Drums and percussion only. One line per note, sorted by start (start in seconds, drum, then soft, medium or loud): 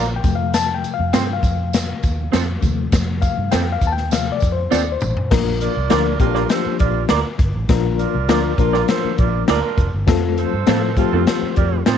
0.24 kick loud
0.24 closed hi-hat medium
0.24 tambourine soft
0.54 snare loud
0.54 closed hi-hat medium
0.54 tambourine loud
0.84 closed hi-hat medium
0.84 tambourine medium
1.13 snare loud
1.13 closed hi-hat loud
1.13 tambourine medium
1.43 kick medium
1.43 closed hi-hat medium
1.43 tambourine medium
1.73 snare loud
1.73 closed hi-hat medium
1.73 tambourine loud
2.03 kick medium
2.03 closed hi-hat medium
2.03 tambourine medium
2.33 snare loud
2.33 closed hi-hat medium
2.33 tambourine loud
2.62 kick medium
2.62 closed hi-hat medium
2.62 tambourine medium
2.92 kick loud
2.92 snare loud
2.92 closed hi-hat medium
2.92 tambourine loud
3.22 kick medium
3.22 closed hi-hat medium
3.22 tambourine medium
3.52 snare loud
3.52 closed hi-hat loud
3.52 tambourine medium
3.81 kick medium
3.81 closed hi-hat medium
3.81 tambourine medium
3.97 snare soft
4.11 snare loud
4.11 closed hi-hat medium
4.11 tambourine loud
4.40 kick medium
4.40 closed hi-hat medium
4.40 tambourine medium
4.72 snare medium
4.72 tambourine loud
5.01 mid tom medium
5.01 tambourine medium
5.17 floor tom medium
5.31 kick loud
5.31 snare loud
5.31 crash loud
5.61 closed hi-hat medium
5.90 snare loud
5.90 closed hi-hat loud
6.20 kick medium
6.20 closed hi-hat medium
6.35 snare soft
6.49 snare loud
6.49 closed hi-hat loud
6.79 kick medium
6.79 closed hi-hat medium
7.09 snare loud
7.09 closed hi-hat medium
7.39 kick loud
7.39 closed hi-hat medium
7.69 kick loud
7.69 snare loud
7.69 closed hi-hat loud
7.99 closed hi-hat medium
8.29 snare loud
8.29 closed hi-hat loud
8.58 kick medium
8.58 closed hi-hat medium
8.74 snare soft
8.88 snare loud
8.88 closed hi-hat medium
9.18 kick medium
9.18 closed hi-hat medium
9.48 snare loud
9.48 closed hi-hat medium
9.78 kick medium
9.78 closed hi-hat medium
10.08 kick loud
10.08 snare loud
10.08 closed hi-hat loud
10.38 closed hi-hat medium
10.67 snare loud
10.67 closed hi-hat loud
10.97 kick medium
10.97 closed hi-hat medium
11.27 snare loud
11.27 closed hi-hat medium
11.56 kick medium
11.56 closed hi-hat medium
11.86 snare loud
11.86 closed hi-hat medium